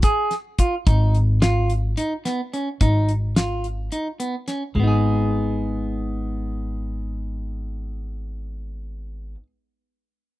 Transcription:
0.02 G#4, kick, closed hi-hat
0.31 snare, closed hi-hat
0.59 F4, kick, closed hi-hat
0.87 G#1 D#4, kick, closed hi-hat
1.15 closed hi-hat
1.42 F4, snare, closed hi-hat
1.70 closed hi-hat
1.97 D#4, closed hi-hat
2.25 B3, snare, closed hi-hat
2.54 C#4, closed hi-hat
2.81 G#1 D#4, kick, closed hi-hat
3.09 closed hi-hat
3.36 F4, snare, closed hi-hat
3.64 closed hi-hat
3.92 D#4, closed hi-hat
4.20 B3, closed hi-hat
4.48 C#4, snare, closed hi-hat
4.75 G#1 G#3
4.80 B3 D#4
4.87 G#4

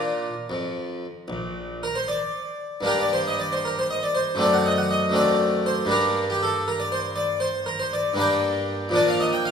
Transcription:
Already playing: A#2 D4 F4 A#4
0.50 F2
1.28 A#1
1.83 A#4
1.95 C5
2.08 D5
2.81 G2 A#3 D4
2.85 G4 A#4
3.01 D5
3.13 C5
3.27 D#5
3.39 D5
3.53 C5
3.65 A#4
3.79 C5
3.90 D#5
4.03 D5
4.15 C5
4.35 F#2 A3 C4 D4
4.41 D5
4.54 F#5
4.66 D#5
4.78 F#5
4.91 D#5
5.10 F#2 A3 C4 D4
5.16 D5
5.66 C5
5.85 G2 G3 A#3
5.89 D4 A#4
6.30 G4
6.43 A4
6.68 A#4
6.80 D5
6.92 C5
7.16 D5
7.40 C5
7.66 A#4
7.79 C5
7.93 D5
8.14 G2 G3 A#3 D4
8.19 G5
8.89 A#2 F3 A#3
8.93 D4 D5
9.08 F5
9.20 D#5
9.33 G5
9.45 F5

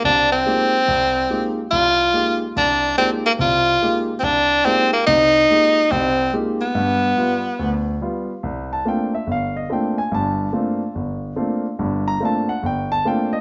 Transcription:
0.04 C2 C3 D4
0.32 C4
0.46 G#3 A#3 D#4 F4 G4
0.88 C2
1.30 G#3 A#3 D#4 F4 G4
1.71 C2 F4
2.14 G#3 A#3 D#4 F4 G4
2.56 C2 D4
2.98 G#3 A#3 C4 D#4 F4 G4
3.26 A#3
3.39 C2 C3 F4
3.82 G#3 A#3 D#4 F4 G4
4.20 C2 C4
4.24 D4
4.65 G#3 A#3 C4 D#4 F4 G4
4.93 A#3
5.06 C2 C3 D#4
5.49 G#3 A#3 D#4 F4 G4
5.91 C2 C3 C4
6.33 G#3 A#3 D#4 F4 G4
6.61 B3
6.75 G2
7.17 G3 B3 F4
7.59 D2
8.02 G3 B3 F4
8.43 C2
8.73 A5
8.85 A3 A#3 C4 D4 F4 G5
9.15 E5
9.27 G1
9.32 F5
9.57 D#5
9.70 A3 A#3 C4 D4 F4 G5
9.98 G#5
10.12 G1 G2 A5
10.53 A3 A#3 C4 D4 F4
10.95 G1
11.36 A3 A#3 C4 D4 F4
11.79 G1 G2
12.08 A#5
12.20 A3 A#3 C4 D4 F4
12.25 A5
12.49 F#5
12.63 G1 G5
12.92 A5
13.05 A3 A#3 C4 D4 F4 G5
13.33 D#5

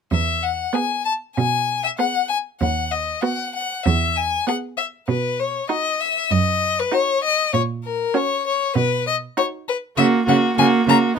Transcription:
0.11 E2 E5
0.43 F#5
0.73 B3 G#4 G#5
1.05 A5
1.37 B2 G#5
1.84 E5
1.98 B3 G#4 F#5
2.29 G#5
2.60 D#2 F#5
2.91 D#5
3.23 B3 F#4 F#5
3.55 F#5
3.85 E2 E5
4.16 G#5
4.47 B3 G#4 F#5
4.77 E5
5.08 B2 B4
5.39 C#5
5.69 D#4 F#4 D#5
6.01 E5
6.31 F#2 D#5
6.79 B4
6.92 D#4 F#4 C#5
7.23 D#5
7.53 A#2 C#5
7.84 A#4
8.14 C#4 F#4 C#5
8.46 C#5
8.75 B2 B4
9.07 D#5
9.37 D#4 F#4 C#5
9.68 B4
9.97 C#3 A#3 F#4 E5
10.26 C#3 A#3 F#4 F#5
10.57 C#3 A#3 F#4 G#5
10.87 C#3 A#3 F#4 A#5

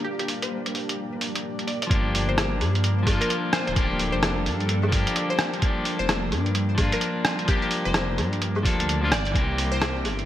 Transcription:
Already playing: F3 G3 A#3 D4 F4 G4 F5
0.04 G4
0.19 G4, closed hi-hat
0.28 open hi-hat
0.42 C5, closed hi-hat
0.66 closed hi-hat
0.75 open hi-hat
0.89 closed hi-hat
1.21 open hi-hat
1.36 closed hi-hat
1.59 closed hi-hat
1.67 D5, open hi-hat
1.82 D5, closed hi-hat
1.87 F3 A#3, kick
1.91 G1 D4 G4, closed hi-hat
2.15 A4, open hi-hat
2.29 C5
2.38 cross-stick, closed hi-hat, low woodblock
2.60 G2, open hi-hat, low woodblock
2.75 closed hi-hat
2.84 closed hi-hat
3.03 F3 A#3
3.07 D4, kick, open hi-hat, low woodblock
3.11 F4
3.21 A#4, closed hi-hat
3.30 closed hi-hat
3.53 C5, cross-stick, open hi-hat
3.67 D1 C5, closed hi-hat
3.73 F3 A#3, kick, closed hi-hat
3.78 D4 G4
3.99 open hi-hat
4.12 F1 C5
4.23 cross-stick, closed hi-hat, low woodblock
4.46 G2, open hi-hat
4.60 closed hi-hat
4.69 closed hi-hat
4.83 low woodblock
4.89 F3 A#3, open hi-hat
4.93 D4, kick
4.97 G4
5.07 closed hi-hat
5.16 closed hi-hat
5.30 C5
5.39 cross-stick, open hi-hat
5.54 closed hi-hat
5.59 F3 A#3, kick, closed hi-hat
5.65 D4 G4
5.85 open hi-hat
5.99 F1 C5
6.09 cross-stick, closed hi-hat, low woodblock
6.32 G2, open hi-hat, low woodblock
6.46 G4, closed hi-hat
6.55 closed hi-hat
6.75 F3 A#3, kick, open hi-hat, low woodblock
6.80 D4 F4
6.92 A#4, closed hi-hat
7.01 closed hi-hat
7.25 cross-stick, open hi-hat
7.39 closed hi-hat
7.45 F3 A#3 G4, kick, closed hi-hat
7.50 D4 G4
7.62 G4
7.71 open hi-hat
7.85 F1 C5
7.94 cross-stick, closed hi-hat, low woodblock
8.18 G2, open hi-hat, low woodblock
8.33 closed hi-hat
8.42 closed hi-hat
8.56 low woodblock
8.63 D2 F3 A#3 D4, kick, open hi-hat
8.67 A4
8.80 closed hi-hat
8.89 closed hi-hat
9.01 F3 A#3 D4 F4
9.11 G1 D5, cross-stick, open hi-hat
9.25 D5, closed hi-hat
9.31 E3 A#3
9.35 C2 C4 E4 E5, kick, closed hi-hat
9.39 G4
9.47 D5
9.58 E5, open hi-hat
9.72 C5
9.82 cross-stick, closed hi-hat, low woodblock
10.04 G1, open hi-hat, low woodblock
10.19 closed hi-hat

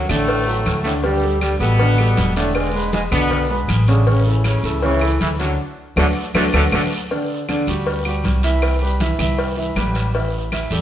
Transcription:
0.09 A1 A2 D3 A3 D4 D5, high conga, low conga, short guiro, claves
0.28 cowbell, high conga, long guiro
0.48 F#3 F#4 A4, high conga
0.66 D2, cowbell, high conga, short guiro, claves
0.84 A2 D3 A3 D4 D5, cowbell, short guiro
1.03 G2 D3 G3 D4 D5, cowbell, high conga, long guiro
1.23 G3 G4 A4, high conga
1.41 G2 G3, cowbell, high conga, short guiro, claves
1.59 A1 B2 G3 B3 G4 A4, short guiro
1.79 D3 D4 D5, cowbell, high conga, long guiro
1.98 G3 G4 A4, high conga, claves
2.17 E1, cowbell, high conga, short guiro
2.36 A2 D3 A3 D4 D5, cowbell, high conga, short guiro
2.55 G#2 G#3, cowbell, long guiro, claves
2.74 G#3 G#4 B4, high conga
2.92 G#2 G#3, cowbell, high conga, short guiro
3.11 B1 B2 D3 B3 D4 D5, high conga, low conga, short guiro, claves
3.30 cowbell, high conga, low conga, long guiro
3.50 G#3 G#4 B4, high conga
3.68 A1, cowbell, high conga, short guiro, claves
3.87 C#3 D3 C#4 D4 C#5, cowbell, short guiro
4.06 C#3 C#4 C#5, cowbell, long guiro
4.26 E3 E4 A4, high conga
4.44 C#3 C#4, cowbell, high conga, short guiro, claves
4.63 C#2 E3 E4 A4, short guiro
4.82 C#3 E3 C#4 E4 C#5, cowbell, high conga, long guiro
5.01 E3 E4 A4, high conga, claves
5.20 D2 E3 E4, cowbell, high conga, short guiro
5.39 F#2 D3 F#3 D4 D5, cowbell, high conga, short guiro
5.96 D2 D3 F#3 A3 D4 F#4, cowbell, high conga, long guiro, claves
6.34 D2 D3 F#3 A3 D4 F#4, cowbell, high conga, long guiro, claves
6.53 D2 D3 F#3 A3 D4 F#4, cowbell, high conga, long guiro, claves
6.72 D2 D3 F#3 A3 D4 F#4, cowbell, high conga, long guiro, claves
7.10 D3 D4 D5, cowbell, high conga, long guiro
7.30 high conga
7.48 D3 D4 D5, cowbell, high conga, short guiro, claves
7.67 D2 G3 F#4 G4, short guiro
7.86 cowbell, high conga, long guiro
8.05 G3 F#4 G4, high conga, claves
8.24 C2, cowbell, high conga, short guiro
8.43 E3 E4 E5, cowbell, short guiro
8.62 cowbell, high conga, long guiro, claves
8.82 G3 G4 B4, high conga
9.00 E3 E4 E5, cowbell, high conga, short guiro
9.19 C2 E3 E4 E5, high conga, low conga, short guiro, claves
9.38 cowbell, high conga, long guiro
9.57 E3 E4 E5, high conga
9.75 A1 G3 G4 B4, cowbell, high conga, short guiro, claves
9.95 cowbell, short guiro
10.14 E3 E4 E5, cowbell, high conga, long guiro
10.33 high conga
10.52 E3 E4 E5, cowbell, high conga, short guiro, claves
10.71 E2 G3 G4 A4, short guiro

